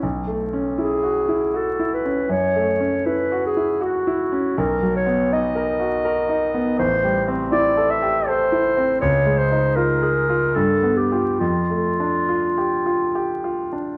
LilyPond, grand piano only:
\new Staff \with { instrumentName = "Grand piano" } { \time 3/4 \key fis \minor \tempo 4 = 80 \tuplet 3/2 { b,,8 a8 cis'8 e'8 fis'8 e'8 fis'8 e'8 cis'8 } | \tuplet 3/2 { fis,8 a8 cis'8 e'8 fis'8 e'8 fis'8 e'8 cis'8 } | \key a \minor \tuplet 3/2 { b,,8 fis8 b8 dis'8 ais'8 fis'8 ais'8 dis'8 b8 } | \tuplet 3/2 { a,,8 g8 c'8 e'8 a'8 g'8 a'8 e'8 c'8 } |
\tuplet 3/2 { des,8 aes8 ees'8 f'8 aes'8 f'8 g,8 b8 <f' g'>8 } | \tuplet 3/2 { f,8 a8 d'8 f'8 g'8 f'8 g'8 f'8 d'8 } | }